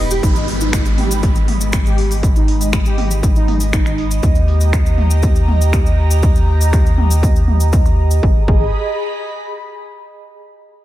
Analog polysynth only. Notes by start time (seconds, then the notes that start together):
0.23 D#4
0.61 D#4
0.98 G4
1.86 G4
2.36 D#4
2.86 G4
3.36 D#4
3.73 D#4